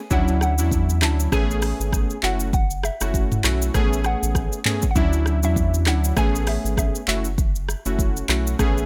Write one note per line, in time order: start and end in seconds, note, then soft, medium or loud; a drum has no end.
0.00 0.13 G#5 loud
0.10 0.60 D2 medium
0.10 0.54 F#3 loud
0.10 0.54 C#4 medium
0.10 0.54 D4 medium
0.10 0.55 E4 loud
0.10 0.40 F#5 loud
0.10 kick loud
0.10 shaker medium
0.28 shaker medium
0.41 1.04 F#5 loud
0.41 cross-stick medium
0.41 shaker medium
0.58 1.03 E2 medium
0.58 0.98 F#3 medium
0.58 0.99 C#4 medium
0.58 0.99 D4 medium
0.58 0.99 E4 medium
0.58 shaker medium
0.71 kick medium
0.71 shaker medium
0.89 shaker medium
1.02 1.28 D2 loud
1.02 1.30 F#3 medium
1.02 1.30 C#4 medium
1.02 1.30 D4 medium
1.02 1.30 E4 medium
1.02 1.31 A5 loud
1.02 cross-stick medium
1.02 clap medium
1.02 shaker medium
1.20 shaker loud
1.32 1.73 A1 loud
1.32 2.17 A3 loud
1.32 2.17 B3 medium
1.32 2.17 C#4 medium
1.32 2.17 G#4 loud
1.32 2.26 G#5 loud
1.32 kick loud
1.32 cross-stick loud
1.32 shaker medium
1.51 shaker medium
1.62 cross-stick loud
1.62 open hi-hat soft
1.62 shaker soft
1.80 2.06 G#1 medium
1.80 shaker medium
1.93 kick medium
1.93 cross-stick medium
1.93 shaker medium
2.10 shaker medium
2.23 2.90 F#1 loud
2.23 2.51 A3 medium
2.23 2.51 C#4 medium
2.23 2.51 E4 medium
2.23 2.51 F#4 medium
2.23 2.53 F#5 loud
2.23 clap medium
2.23 shaker medium
2.40 shaker medium
2.53 2.68 F#5 loud
2.53 kick loud
2.53 shaker medium
2.71 shaker medium
2.83 4.01 E5 loud
2.83 cross-stick loud
2.83 shaker medium
3.01 3.38 F#1 medium
3.01 3.41 A3 medium
3.01 3.41 C#4 medium
3.01 3.41 E4 medium
3.01 3.41 F#4 medium
3.01 cross-stick medium
3.01 shaker medium
3.14 kick medium
3.14 shaker medium
3.32 mid tom loud
3.32 shaker medium
3.44 3.70 B1 medium
3.44 3.72 A3 medium
3.44 3.72 C#4 medium
3.44 3.72 E4 medium
3.44 3.72 F#4 medium
3.44 cross-stick medium
3.44 clap medium
3.44 shaker medium
3.62 shaker loud
3.74 4.15 A1 loud
3.74 4.59 A3 medium
3.74 4.59 B3 medium
3.74 4.59 C#4 medium
3.74 4.59 G#4 loud
3.74 kick loud
3.74 cross-stick medium
3.74 shaker medium
3.93 shaker medium
4.04 4.86 F#5 loud
4.04 cross-stick medium
4.04 shaker soft
4.23 4.49 A1 loud
4.23 shaker medium
4.35 kick medium
4.35 cross-stick medium
4.35 shaker medium
4.52 shaker medium
4.65 4.85 A3 medium
4.65 4.85 B3 medium
4.65 4.85 C#4 medium
4.65 4.85 G#4 medium
4.65 clap loud
4.65 mid tom loud
4.65 shaker medium
4.82 kick loud
4.82 shaker medium
4.91 4.96 F#5 medium
4.95 5.45 D2 loud
4.95 5.39 F#3 loud
4.95 5.39 C#4 medium
4.95 5.39 D4 medium
4.95 5.39 E4 loud
4.95 5.41 E5 loud
4.95 kick loud
4.95 shaker medium
5.13 shaker medium
5.26 cross-stick medium
5.26 shaker medium
5.43 5.88 E2 medium
5.43 5.83 F#3 medium
5.43 5.83 C#4 medium
5.43 5.84 D4 medium
5.43 5.84 E4 medium
5.43 5.88 E5 medium
5.43 shaker medium
5.56 kick medium
5.56 shaker medium
5.74 shaker medium
5.86 6.13 D2 loud
5.86 6.15 F#3 medium
5.86 6.15 C#4 medium
5.86 6.15 D4 medium
5.86 6.15 E4 medium
5.86 6.18 F#5 medium
5.86 cross-stick medium
5.86 clap medium
5.86 shaker medium
6.04 shaker loud
6.16 6.58 A1 loud
6.16 7.01 A3 loud
6.16 7.01 B3 medium
6.16 7.02 C#4 medium
6.16 7.02 G#4 loud
6.16 6.49 G#5 loud
6.16 kick loud
6.16 cross-stick loud
6.16 shaker medium
6.35 shaker medium
6.47 6.77 E5 medium
6.47 cross-stick loud
6.47 open hi-hat medium
6.47 shaker soft
6.65 6.91 G#1 medium
6.65 shaker medium
6.77 7.06 E5 medium
6.77 kick medium
6.77 cross-stick medium
6.77 shaker medium
6.95 shaker medium
7.08 7.75 F#1 loud
7.08 7.27 A3 medium
7.08 7.27 C#4 medium
7.08 7.27 E4 medium
7.08 7.27 F#4 medium
7.08 7.65 E5 medium
7.08 clap loud
7.08 shaker medium
7.25 shaker medium
7.38 kick loud
7.38 shaker medium
7.55 shaker medium
7.69 cross-stick medium
7.69 shaker medium
7.86 8.23 F#1 loud
7.86 8.26 A3 medium
7.86 8.26 C#4 medium
7.86 8.26 E4 medium
7.86 8.26 F#4 medium
7.86 shaker medium
7.99 kick medium
7.99 shaker medium
8.17 shaker medium
8.29 8.55 B1 medium
8.29 8.57 A3 medium
8.29 8.57 C#4 medium
8.29 8.57 E4 medium
8.29 8.57 F#4 medium
8.29 cross-stick medium
8.29 clap medium
8.29 shaker medium
8.47 shaker loud
8.59 8.86 A1 loud
8.59 8.86 A3 medium
8.59 8.86 B3 medium
8.59 8.86 C#4 medium
8.59 8.86 G#4 loud
8.59 kick loud
8.59 cross-stick medium
8.59 shaker medium
8.78 shaker medium